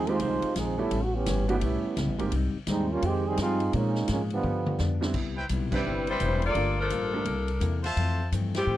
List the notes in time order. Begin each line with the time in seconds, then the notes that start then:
Already playing: D#2
0.07 G#3 C4 D#4 F4 G4 C5, ride
0.19 C2 F2 D#3 G#3 C4 D#4 F4 C5, ride
0.42 muted upright bass stroke, ride
0.56 A#1 F2 D#3 F3 G#3 C4 D#4 G#4, snare, hi-hat pedal, ride
0.77 G3 A3 B3 C#4 E4 G4 A4
0.90 A1 A2 G3 B3, ride
0.94 C#4
1.04 F#4
1.14 E3 B3 C#4 G4
1.26 G1 A2 G3 B3 C#4, snare, hi-hat pedal, ride
1.48 D#3 G3 A3 B3 C#4 E4 F#4 G4, ride
1.61 B1 A2 G3 B3 C#4 E4, ride
1.84 muted upright bass stroke
1.97 C#2 A2 G3 B3 C#4, snare, hi-hat pedal, ride
2.08 A1
2.18 G1 G#3 A#3 C4 D#4 G4, ride
2.32 C2 G#2 G3 C4, ride
2.36 D#4
2.54 muted upright bass stroke
2.67 D#2 G#2 G3 G#3 C4 D#4, snare, hi-hat pedal, ride
2.91 G3 A#3 C#4 F4
3.02 F2 D#3 F3 G#3 C4 D#4 G4, ride
3.27 D#3 G3 C4 G#4
3.37 G2 F3 G#3 C4 D#4 F4 G4 G#4, snare, hi-hat pedal, ride
3.60 ride
3.72 A#2 F3 G#3 A#3 C4 C#4 D#4 F4, ride
3.77 C#4
3.95 snare
4.08 G#2 A#2 F3 G#3 A#3 C#4, snare, hi-hat pedal, ride
4.30 D3 F3 G3 B3, ride
4.43 G2 F3 B3 D4, mid tom
4.66 mid tom
4.78 F2 G2 F3 B3 D4, snare, hi-hat pedal
5.01 G3 B3 C4 D4 E4, snare
5.14 C2 C3 G3 B3, kick, crash
5.18 E4
5.37 E4 B4 C5 G5
5.49 B1 C3 G3 B3 E4, hi-hat pedal, ride
5.71 G3 C4 D4 E4 B4 C5 G5, kick, crash
5.85 G1 C3 G3 B3 E4
6.07 G3 E4 B4 C5, ride
6.20 E1 C3 G3 B3 E4, hi-hat pedal, ride
6.42 A#3 F4 A4 D5, ride
6.54 G1 G3 A3 A#3 D4 F4, ride
6.58 F4 A4
6.80 F3 D4 A4 A#4
6.90 A1 G3 A#3 F4 A4, hi-hat pedal, ride
7.13 G3 A3 A#3 D4 G4
7.25 C2 C3 A#3 E4 A4, ride
7.48 ride
7.60 E2 C3 A#3 E4 A4, hi-hat pedal, ride
7.84 F4 C5 E5 A5, snare, ride
7.96 F2 E3 A3, ride
8.01 C4
8.32 F2 G2 E3 A3 C4, hi-hat pedal, ride
8.54 F3 C4 E4 G4, snare, ride
8.67 F2 A2 E3 A3 C4